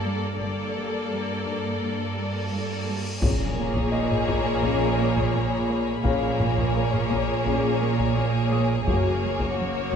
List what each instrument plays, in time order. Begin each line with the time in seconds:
Already playing: cello section G2, viola section A#3, violin section A4 D5, grand piano F5
0.05 cello section G3
0.39 double bass section G1, cello section G2, viola section A#3, violin section A4 D5, cymbal swell
0.75 cello section G3
1.11 cello section G3
1.46 cello section G2
1.81 cello section G2
2.16 cello section G3
2.52 cello section G2
2.87 cello section G3
3.21 double bass section A#1, cello section A#2, viola section A#3, french horn section C#4 G#4, violin section G#4 C#5 A#5, taiko, impact
3.58 cello section A#3, taiko low-mid
3.76 taiko
3.92 cello section A#3, grand piano D#4 D#5, violin section B5
4.11 taiko low-mid
4.28 cello section A#2, taiko
4.63 cello section A#2, french horn section C#4 G#4, taiko
4.98 cello section A#3
5.17 taiko
5.34 cello section A#2
5.69 cello section A#3
6.04 double bass section A#1, cello section A#2, viola section A#3, french horn section C#4 G#4, violin section G#4 C#5, grand piano F5, taiko
6.39 cello section A#3, taiko low-mid
6.58 taiko
6.75 cello section A#3
6.93 taiko low-mid
7.10 cello section A#2, taiko
7.34 violin section A#5
7.45 cello section A#2, french horn section C#4 G#4, taiko
7.80 cello section A#3
7.99 taiko
8.15 cello section A#2
8.52 cello section A#3, grand piano D#6
8.87 double bass section F#1, cello section F#2, french horn section A#3 F#4, viola section A#3, violin section C#5 C#6, taiko
9.23 cello section F#3
9.40 taiko
9.57 cello section F#3, violin section F#4 D#6